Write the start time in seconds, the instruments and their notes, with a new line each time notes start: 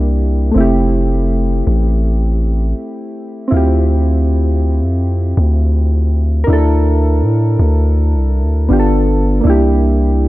Already playing: 808-style bass C2, synth keys A#3 D4 E4 G4
0.52 synth keys A3 C4
0.56 808-style bass F1, synth keys E4
0.60 synth keys G4
1.67 808-style bass A1
3.48 synth keys C4 E4
3.52 808-style bass D2, synth keys F4
3.57 synth keys G4
4.82 808-style bass F2
5.37 808-style bass D2
6.44 synth keys D4 A#4
6.48 808-style bass D2, synth keys E4
6.53 synth keys A4
7.22 808-style bass A2
7.59 808-style bass D2
8.15 808-style bass C2
8.43 808-style bass D2
8.69 808-style bass G1, synth keys B3 D4 F4
8.73 synth keys G4
8.79 synth keys A4
9.41 synth keys A#3 D4
9.45 808-style bass C2, synth keys E4
9.50 synth keys G4